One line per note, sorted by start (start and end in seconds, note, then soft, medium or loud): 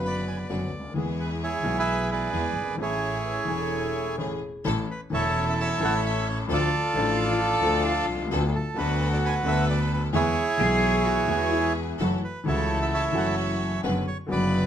0.00 0.47 F#1 medium
0.00 0.47 F#2 medium
0.00 0.47 C#3 medium
0.00 0.46 D3 medium
0.00 0.47 F#3 medium
0.00 0.47 B3 medium
0.00 0.48 F#4 medium
0.00 0.47 B4 medium
0.05 0.93 D5 medium
0.05 0.16 B5 loud
0.28 0.38 G#5 medium
0.49 0.69 F#1 medium
0.49 0.69 F#2 medium
0.49 0.69 D3 medium
0.49 0.69 F#3 medium
0.49 0.69 B3 medium
0.49 0.69 C#4 medium
0.49 0.69 D4 medium
0.49 0.69 F#4 medium
0.49 0.69 B4 medium
0.72 0.94 D2 medium
0.79 0.85 C#2 medium
0.84 0.90 D2 medium
0.90 0.96 D#2 medium
0.94 1.61 E2 medium
0.94 0.95 E3 medium
0.94 1.61 E3 medium
0.94 1.61 G#3 medium
0.94 1.61 B3 medium
0.94 1.62 B3 medium
0.94 1.61 E4 medium
0.94 1.61 G#4 medium
0.94 1.62 G#4 medium
1.20 1.30 B4 medium
1.43 2.30 E4 medium
1.43 1.77 G#4 medium
1.43 1.78 C#5 loud
1.63 2.29 B1 medium
1.63 2.30 B2 medium
1.63 2.29 E3 medium
1.63 2.29 G#3 medium
1.63 2.30 B3 medium
1.63 2.30 E4 medium
1.63 2.30 G#4 medium
1.67 2.31 G#4 medium
1.79 2.10 G#4 medium
1.79 2.10 B4 medium
1.79 2.10 E5 loud
2.12 2.76 G#4 medium
2.12 2.76 B4 medium
2.12 2.76 D5 medium
2.33 2.52 E2 medium
2.33 2.52 E3 medium
2.33 2.52 G#3 medium
2.33 2.52 B3 medium
2.33 2.52 E4 medium
2.33 2.52 G#4 medium
2.56 2.77 G1 medium
2.61 2.67 F#1 soft
2.66 2.73 G1 medium
2.71 2.78 G#1 medium
2.76 3.44 A1 medium
2.76 3.44 A2 medium
2.76 3.43 E3 medium
2.76 3.44 A3 medium
2.76 3.45 A3 medium
2.76 3.45 C#4 medium
2.76 3.45 G#4 medium
2.82 4.16 E4 medium
2.82 4.16 G#4 medium
2.82 4.16 C#5 medium
3.24 3.61 B4 medium
3.45 4.14 E1 medium
3.45 4.14 E2 medium
3.45 4.13 E3 medium
3.45 4.14 A3 medium
3.45 4.15 A3 medium
3.45 4.14 C#4 medium
3.45 4.15 C#4 medium
3.45 4.15 E4 medium
3.45 4.15 G#5 medium
3.58 4.31 A4 medium
4.18 4.38 A1 medium
4.18 4.38 A2 medium
4.18 4.38 E3 medium
4.18 4.38 A3 medium
4.18 4.38 C#4 medium
4.18 4.39 C#4 medium
4.18 4.38 G#4 medium
4.18 4.39 G#4 medium
4.31 4.63 G#4 medium
4.65 4.85 A1 medium
4.65 4.85 A2 medium
4.65 4.85 E3 medium
4.65 4.85 A3 medium
4.65 4.85 C#4 medium
4.65 4.85 E4 medium
4.65 4.85 A4 medium
4.65 4.85 A4 loud
4.91 5.01 B4 medium
5.10 5.77 E1 loud
5.10 5.77 E1 medium
5.10 5.77 E2 medium
5.10 5.76 E3 medium
5.10 5.77 A3 medium
5.10 5.77 C#4 medium
5.10 5.77 E4 medium
5.10 6.01 E4 medium
5.10 5.78 A4 loud
5.10 6.00 A4 medium
5.10 5.78 A4 medium
5.10 5.45 C#5 loud
5.50 5.54 E5 medium
5.60 6.27 C#5 medium
5.60 6.05 E5 medium
5.60 5.80 A5 loud
5.79 6.46 A1 loud
5.79 6.46 A1 medium
5.79 6.46 A2 medium
5.79 6.45 E3 medium
5.79 6.45 A3 medium
5.79 6.46 C#4 medium
5.79 6.46 E4 medium
5.79 6.46 A4 loud
5.79 6.46 A4 medium
5.84 5.94 F#5 loud
6.06 6.28 E5 medium
6.29 6.39 C#5 medium
6.48 6.68 D2 medium
6.48 6.67 D3 medium
6.48 6.68 F3 medium
6.48 6.67 A3 medium
6.48 6.68 D4 medium
6.48 6.68 F4 medium
6.48 6.68 A4 medium
6.48 6.69 A4 medium
6.53 8.06 F4 medium
6.53 8.06 A4 medium
6.53 8.06 D5 loud
6.93 7.59 A1 loud
6.93 7.59 A1 medium
6.93 7.60 A2 medium
6.93 7.59 F3 medium
6.93 7.59 A3 medium
6.93 7.59 D4 medium
6.93 7.60 D4 medium
6.93 7.41 F4 loud
6.93 7.59 F4 medium
6.93 7.59 A4 medium
6.93 7.60 A4 medium
7.40 7.86 A4 loud
7.61 8.08 D2 loud
7.61 8.28 D2 loud
7.61 8.27 D3 loud
7.61 8.27 F3 medium
7.61 8.28 A3 medium
7.61 8.27 D4 medium
7.61 8.28 D4 medium
7.61 8.27 F4 medium
7.61 8.27 A4 loud
7.66 8.29 A4 medium
7.85 8.42 F4 loud
8.08 8.30 C2 medium
8.14 8.20 B1 medium
8.22 8.26 C2 medium
8.26 8.31 C#2 medium
8.26 8.50 D2 loud
8.31 8.50 D2 medium
8.31 8.50 D3 medium
8.31 8.50 F#3 medium
8.31 8.50 B3 medium
8.31 8.50 D4 medium
8.31 8.50 A4 medium
8.31 8.51 A4 medium
8.55 8.78 A4 medium
8.74 9.40 D2 loud
8.74 9.41 D2 medium
8.74 9.41 D3 medium
8.74 9.40 F#3 medium
8.74 9.41 B3 medium
8.74 9.41 D4 medium
8.74 9.42 D4 medium
8.74 9.41 A4 loud
8.74 9.42 A4 medium
8.74 9.09 B4 loud
8.79 9.65 F#4 medium
9.13 9.18 D5 loud
9.25 9.92 B4 medium
9.25 9.35 G#5 loud
9.43 10.09 D2 loud
9.43 10.10 D2 loud
9.43 10.10 D3 loud
9.43 10.09 F#3 medium
9.43 10.10 B3 medium
9.43 10.10 D4 medium
9.43 10.10 A4 loud
9.47 10.11 A4 loud
9.47 9.68 E5 loud
9.70 9.80 D5 loud
9.93 10.03 B4 medium
10.12 10.32 E2 loud
10.12 10.32 E2 medium
10.12 10.33 E3 medium
10.12 10.32 G#3 medium
10.12 10.32 B3 medium
10.12 10.32 E4 medium
10.12 11.73 E4 medium
10.12 10.32 G#4 medium
10.12 10.33 G#4 medium
10.12 11.73 G#4 medium
10.12 11.73 C#5 loud
10.57 11.25 B1 loud
10.57 11.25 B1 medium
10.57 11.26 B2 medium
10.57 11.24 E3 medium
10.57 11.25 G#3 medium
10.57 11.25 B3 medium
10.57 11.26 B3 medium
10.57 11.25 E4 medium
10.57 11.01 G#4 loud
10.57 11.06 G#4 loud
10.57 11.25 G#4 loud
10.62 11.27 G#4 medium
11.05 11.52 F#4 loud
11.05 11.54 F#4 loud
11.28 11.95 E2 medium
11.28 11.96 E2 medium
11.28 11.96 E3 medium
11.28 11.96 G#3 medium
11.28 11.96 B3 medium
11.28 11.96 E4 medium
11.28 11.96 G#4 loud
11.28 11.97 G#4 medium
11.51 12.10 E4 medium
11.51 12.07 E4 medium
11.98 12.19 F#1 medium
11.98 12.19 F#2 medium
11.98 12.19 E3 medium
11.98 12.19 F#3 medium
11.98 12.19 A3 medium
11.98 12.19 C#4 medium
11.98 12.18 E4 medium
11.98 12.18 F#4 medium
11.98 12.20 F#4 medium
11.98 12.19 A4 medium
12.24 12.45 B4 medium
12.44 13.11 C#2 medium
12.44 13.12 C#2 loud
12.44 13.11 C#3 medium
12.44 13.10 E3 medium
12.44 13.11 A3 medium
12.44 13.12 C#4 medium
12.44 13.11 E4 medium
12.44 13.11 F#4 medium
12.44 13.12 F#4 medium
12.44 13.12 A4 medium
12.44 12.79 C#5 loud
12.48 13.35 E4 medium
12.48 13.35 A4 medium
12.82 12.87 E5 medium
12.94 13.81 C#5 medium
12.94 13.81 E5 medium
12.94 13.04 A5 medium
13.12 13.80 F#1 medium
13.12 13.80 F#2 medium
13.12 13.79 E3 medium
13.12 13.80 F#3 loud
13.12 13.80 A3 medium
13.12 13.81 C#4 medium
13.12 13.80 E4 medium
13.12 13.80 F#4 medium
13.12 13.81 F#4 medium
13.12 13.81 A4 loud
13.18 13.28 F#5 medium
13.83 14.03 F#1 loud
13.83 14.03 F#2 medium
13.83 14.03 D3 medium
13.83 14.03 F#3 medium
13.83 14.03 B3 medium
13.83 14.03 C#4 medium
13.83 14.03 D4 medium
13.83 14.03 F#4 medium
13.83 14.03 B4 medium
14.07 14.18 C#5 medium
14.27 14.66 F#1 loud
14.27 14.66 F#2 medium
14.27 14.66 C#3 medium
14.27 14.66 D3 medium
14.27 14.66 F#3 medium
14.27 14.66 B3 medium
14.27 14.66 B4 medium
14.31 14.66 F#4 medium
14.31 14.66 B4 medium
14.31 14.66 D5 loud